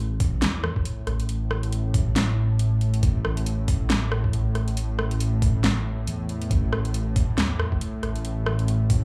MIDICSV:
0, 0, Header, 1, 4, 480
1, 0, Start_track
1, 0, Tempo, 434783
1, 1425, Time_signature, 4, 2, 24, 8
1, 9980, End_track
2, 0, Start_track
2, 0, Title_t, "Synth drone"
2, 0, Program_c, 0, 95
2, 0, Note_on_c, 0, 45, 76
2, 9980, Note_off_c, 0, 45, 0
2, 9980, End_track
3, 0, Start_track
3, 0, Title_t, "Detuned saw bass"
3, 0, Program_c, 1, 39
3, 0, Note_on_c, 1, 33, 100
3, 463, Note_on_c, 1, 40, 101
3, 479, Note_off_c, 1, 33, 0
3, 687, Note_off_c, 1, 40, 0
3, 1181, Note_on_c, 1, 33, 86
3, 1784, Note_off_c, 1, 33, 0
3, 1800, Note_on_c, 1, 33, 88
3, 3704, Note_off_c, 1, 33, 0
3, 3722, Note_on_c, 1, 33, 87
3, 5625, Note_off_c, 1, 33, 0
3, 5643, Note_on_c, 1, 33, 92
3, 6585, Note_off_c, 1, 33, 0
3, 6602, Note_on_c, 1, 33, 88
3, 6696, Note_off_c, 1, 33, 0
3, 6705, Note_on_c, 1, 40, 87
3, 7172, Note_off_c, 1, 40, 0
3, 7185, Note_on_c, 1, 33, 98
3, 8144, Note_on_c, 1, 40, 97
3, 8161, Note_off_c, 1, 33, 0
3, 8368, Note_off_c, 1, 40, 0
3, 8864, Note_on_c, 1, 33, 84
3, 9464, Note_off_c, 1, 33, 0
3, 9483, Note_on_c, 1, 33, 89
3, 9980, Note_off_c, 1, 33, 0
3, 9980, End_track
4, 0, Start_track
4, 0, Title_t, "Drums"
4, 222, Note_on_c, 9, 46, 99
4, 223, Note_on_c, 9, 36, 110
4, 332, Note_off_c, 9, 46, 0
4, 334, Note_off_c, 9, 36, 0
4, 462, Note_on_c, 9, 38, 120
4, 462, Note_on_c, 9, 42, 84
4, 573, Note_off_c, 9, 38, 0
4, 573, Note_off_c, 9, 42, 0
4, 702, Note_on_c, 9, 37, 84
4, 813, Note_off_c, 9, 37, 0
4, 842, Note_on_c, 9, 36, 62
4, 943, Note_on_c, 9, 42, 86
4, 952, Note_off_c, 9, 36, 0
4, 1054, Note_off_c, 9, 42, 0
4, 1182, Note_on_c, 9, 37, 53
4, 1182, Note_on_c, 9, 42, 55
4, 1292, Note_off_c, 9, 37, 0
4, 1292, Note_off_c, 9, 42, 0
4, 1321, Note_on_c, 9, 42, 53
4, 1423, Note_off_c, 9, 42, 0
4, 1423, Note_on_c, 9, 42, 81
4, 1533, Note_off_c, 9, 42, 0
4, 1664, Note_on_c, 9, 37, 76
4, 1774, Note_off_c, 9, 37, 0
4, 1802, Note_on_c, 9, 42, 57
4, 1904, Note_off_c, 9, 42, 0
4, 1904, Note_on_c, 9, 42, 85
4, 2015, Note_off_c, 9, 42, 0
4, 2144, Note_on_c, 9, 36, 112
4, 2144, Note_on_c, 9, 46, 94
4, 2254, Note_off_c, 9, 36, 0
4, 2255, Note_off_c, 9, 46, 0
4, 2384, Note_on_c, 9, 38, 118
4, 2384, Note_on_c, 9, 42, 83
4, 2495, Note_off_c, 9, 38, 0
4, 2495, Note_off_c, 9, 42, 0
4, 2863, Note_on_c, 9, 42, 87
4, 2974, Note_off_c, 9, 42, 0
4, 3104, Note_on_c, 9, 42, 58
4, 3214, Note_off_c, 9, 42, 0
4, 3242, Note_on_c, 9, 42, 53
4, 3344, Note_off_c, 9, 42, 0
4, 3344, Note_on_c, 9, 36, 127
4, 3344, Note_on_c, 9, 42, 82
4, 3455, Note_off_c, 9, 36, 0
4, 3455, Note_off_c, 9, 42, 0
4, 3584, Note_on_c, 9, 37, 75
4, 3695, Note_off_c, 9, 37, 0
4, 3722, Note_on_c, 9, 42, 56
4, 3824, Note_off_c, 9, 42, 0
4, 3824, Note_on_c, 9, 42, 81
4, 3935, Note_off_c, 9, 42, 0
4, 4063, Note_on_c, 9, 46, 87
4, 4065, Note_on_c, 9, 36, 110
4, 4174, Note_off_c, 9, 46, 0
4, 4175, Note_off_c, 9, 36, 0
4, 4303, Note_on_c, 9, 38, 121
4, 4303, Note_on_c, 9, 42, 85
4, 4414, Note_off_c, 9, 38, 0
4, 4414, Note_off_c, 9, 42, 0
4, 4545, Note_on_c, 9, 37, 77
4, 4655, Note_off_c, 9, 37, 0
4, 4683, Note_on_c, 9, 36, 68
4, 4784, Note_on_c, 9, 42, 84
4, 4793, Note_off_c, 9, 36, 0
4, 4894, Note_off_c, 9, 42, 0
4, 5025, Note_on_c, 9, 37, 54
4, 5025, Note_on_c, 9, 42, 57
4, 5135, Note_off_c, 9, 37, 0
4, 5135, Note_off_c, 9, 42, 0
4, 5163, Note_on_c, 9, 42, 53
4, 5266, Note_off_c, 9, 42, 0
4, 5266, Note_on_c, 9, 42, 84
4, 5376, Note_off_c, 9, 42, 0
4, 5505, Note_on_c, 9, 37, 80
4, 5616, Note_off_c, 9, 37, 0
4, 5643, Note_on_c, 9, 42, 54
4, 5746, Note_off_c, 9, 42, 0
4, 5746, Note_on_c, 9, 42, 82
4, 5856, Note_off_c, 9, 42, 0
4, 5985, Note_on_c, 9, 36, 115
4, 5986, Note_on_c, 9, 46, 87
4, 6096, Note_off_c, 9, 36, 0
4, 6096, Note_off_c, 9, 46, 0
4, 6225, Note_on_c, 9, 38, 124
4, 6225, Note_on_c, 9, 42, 80
4, 6335, Note_off_c, 9, 38, 0
4, 6335, Note_off_c, 9, 42, 0
4, 6706, Note_on_c, 9, 42, 80
4, 6816, Note_off_c, 9, 42, 0
4, 6946, Note_on_c, 9, 42, 55
4, 7056, Note_off_c, 9, 42, 0
4, 7083, Note_on_c, 9, 42, 54
4, 7185, Note_off_c, 9, 42, 0
4, 7185, Note_on_c, 9, 36, 123
4, 7185, Note_on_c, 9, 42, 78
4, 7296, Note_off_c, 9, 36, 0
4, 7296, Note_off_c, 9, 42, 0
4, 7425, Note_on_c, 9, 37, 83
4, 7536, Note_off_c, 9, 37, 0
4, 7563, Note_on_c, 9, 42, 54
4, 7665, Note_off_c, 9, 42, 0
4, 7665, Note_on_c, 9, 42, 79
4, 7775, Note_off_c, 9, 42, 0
4, 7905, Note_on_c, 9, 46, 87
4, 7906, Note_on_c, 9, 36, 104
4, 8015, Note_off_c, 9, 46, 0
4, 8016, Note_off_c, 9, 36, 0
4, 8144, Note_on_c, 9, 38, 121
4, 8144, Note_on_c, 9, 42, 76
4, 8255, Note_off_c, 9, 38, 0
4, 8255, Note_off_c, 9, 42, 0
4, 8385, Note_on_c, 9, 37, 80
4, 8495, Note_off_c, 9, 37, 0
4, 8523, Note_on_c, 9, 36, 63
4, 8626, Note_on_c, 9, 42, 81
4, 8634, Note_off_c, 9, 36, 0
4, 8736, Note_off_c, 9, 42, 0
4, 8866, Note_on_c, 9, 37, 55
4, 8866, Note_on_c, 9, 42, 53
4, 8976, Note_off_c, 9, 37, 0
4, 8976, Note_off_c, 9, 42, 0
4, 9004, Note_on_c, 9, 42, 51
4, 9105, Note_off_c, 9, 42, 0
4, 9105, Note_on_c, 9, 42, 78
4, 9215, Note_off_c, 9, 42, 0
4, 9344, Note_on_c, 9, 37, 84
4, 9454, Note_off_c, 9, 37, 0
4, 9484, Note_on_c, 9, 42, 52
4, 9585, Note_off_c, 9, 42, 0
4, 9585, Note_on_c, 9, 42, 77
4, 9695, Note_off_c, 9, 42, 0
4, 9825, Note_on_c, 9, 36, 104
4, 9825, Note_on_c, 9, 46, 90
4, 9935, Note_off_c, 9, 36, 0
4, 9935, Note_off_c, 9, 46, 0
4, 9980, End_track
0, 0, End_of_file